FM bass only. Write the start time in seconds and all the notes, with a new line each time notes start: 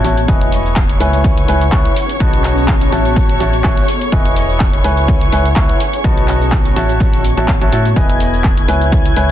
0.04 A1
1.00 C#2
1.48 C#2
1.72 C#2
2.20 B1
2.92 A1
3.40 A1
4.12 E1
4.84 C#2
5.32 C#2
5.56 C#2
6.04 B1
6.76 A1
7.37 A1
7.61 A1
7.72 A2
7.96 E1
8.68 C#2
9.16 C#2